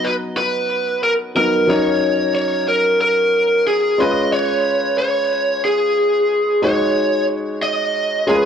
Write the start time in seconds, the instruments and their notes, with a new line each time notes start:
Already playing: grand piano F#3 B3 D#4 A#5
0.04 lead electric guitar B4
0.37 lead electric guitar B4
1.03 lead electric guitar A#4
1.35 grand piano F#3 B3 D#4 A#4, lead electric guitar A#4
1.67 grand piano F#3 C#4 D#4 A#4, lead electric guitar C#5
2.35 lead electric guitar C#5
2.68 lead electric guitar A#4
3.01 lead electric guitar A#4
3.67 lead electric guitar G#4
3.98 grand piano G#3 C#4 F4 B4, lead electric guitar D#5
4.33 lead electric guitar C#5
4.99 lead electric guitar C#5
5.65 lead electric guitar G#4
6.62 grand piano G#3 D#4 F#4 C#5, lead electric guitar C#5
7.63 lead electric guitar D#5
8.27 grand piano G#3 C#4 F4 A#4, lead electric guitar G#4
8.36 grand piano B4